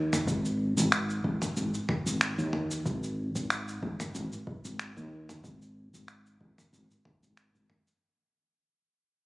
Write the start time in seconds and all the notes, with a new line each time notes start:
Already playing: D#2
0.13 mid tom, cabasa
0.27 G#1, kick, cabasa
0.45 cabasa
0.77 G#1, cabasa
0.92 finger snap, cabasa
1.10 cabasa
1.24 G#1, kick
1.42 mid tom, cabasa
1.57 G#1, cabasa
1.74 cabasa
1.89 kick, mid tom
2.06 G#1, cabasa
2.21 finger snap, cabasa
2.38 D#2, cabasa
2.53 mid tom
2.71 cabasa
2.86 G#1, kick, cabasa
3.03 cabasa
3.35 G#1, kick, cabasa
3.50 finger snap, cabasa
3.68 cabasa
3.83 G#1, kick
4.00 mid tom, cabasa
4.15 G#1, cabasa
4.32 cabasa
4.47 kick
4.65 G#1, cabasa
4.79 finger snap, cabasa
4.97 D#2, cabasa
5.29 mid tom, cabasa
5.44 G#1, kick, cabasa
5.62 cabasa
5.94 G#1, cabasa
6.08 finger snap, cabasa
6.26 cabasa
6.41 G#1, kick
6.58 mid tom, cabasa
6.73 G#1, cabasa
6.91 cabasa
7.05 kick, mid tom
7.23 G#1, cabasa
7.37 finger snap, cabasa
7.55 G#1, cabasa
7.70 mid tom
7.87 cabasa